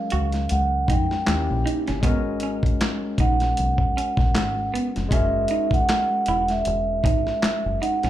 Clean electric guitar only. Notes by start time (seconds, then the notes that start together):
0.12 F#4
0.90 D#4
1.28 muted clean electric guitar stroke
1.66 D#4
1.88 C#4
2.04 B3
2.43 C#4
3.20 D#4
3.97 C#4
4.74 B3
5.12 C#4
5.51 D#4
6.28 E4
7.05 D#4
7.43 muted clean electric guitar stroke
7.82 D#4
8.05 C#4